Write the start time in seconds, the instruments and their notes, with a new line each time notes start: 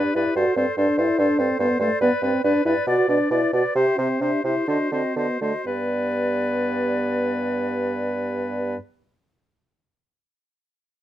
Already playing: french horn D4, clarinet G4, oboe B4, flute D5
0.14 bassoon G2, french horn E4, clarinet G4, oboe B4, flute D5
0.34 bassoon G2, french horn F#4, clarinet A4, oboe C5, flute D5
0.55 bassoon G2, french horn C4, clarinet A4, oboe C5, flute D5
0.77 bassoon G2, french horn D4, clarinet A4, oboe C5, flute D5
0.98 bassoon G2, french horn E4, clarinet A4, oboe C5, flute D5
1.18 bassoon G2, french horn D4, clarinet A4, oboe C5, flute D5
1.38 bassoon G2, french horn C4, clarinet A4, oboe C5, flute D5
1.59 bassoon G2, french horn B3, clarinet A4, oboe C5, flute D5
1.79 bassoon G2, french horn A3, clarinet A4, oboe C5, flute D5
2.01 bassoon G2, french horn B3, oboe B4, clarinet B4, flute D5
2.22 bassoon G2, french horn C4, oboe B4, clarinet B4, flute D5
2.44 bassoon G2, french horn D4, clarinet B4, oboe B4, flute D5
2.65 bassoon G2, french horn E4, clarinet B4, oboe B4, flute D5
2.87 bassoon B2, french horn F#4, clarinet B4, flute D5, oboe D5
3.08 bassoon B2, french horn D4, clarinet B4, flute D5, oboe D5
3.31 bassoon B2, french horn E4, clarinet B4, flute D5, oboe D5
3.53 bassoon B2, french horn F#4, clarinet B4, oboe D5, flute D5
3.75 bassoon C3, french horn G4, clarinet G4, oboe C5, flute E5
3.98 bassoon C3, french horn C4, clarinet G4, oboe C5, flute E5
4.21 bassoon C3, french horn D4, clarinet G4, oboe C5, flute E5
4.44 bassoon C3, french horn E4, clarinet G4, oboe C5, flute E5
4.68 bassoon D3, french horn D4, clarinet F#4, oboe C5, flute D#5
4.91 bassoon D3, french horn C4, clarinet F#4, oboe C5, flute D#5
5.16 bassoon D3, french horn B3, clarinet F#4, oboe C5, flute D#5
5.41 bassoon D3, french horn A3, clarinet F#4, oboe C5, flute D#5
5.66 bassoon G2, french horn B3, clarinet G4, oboe B4, flute D5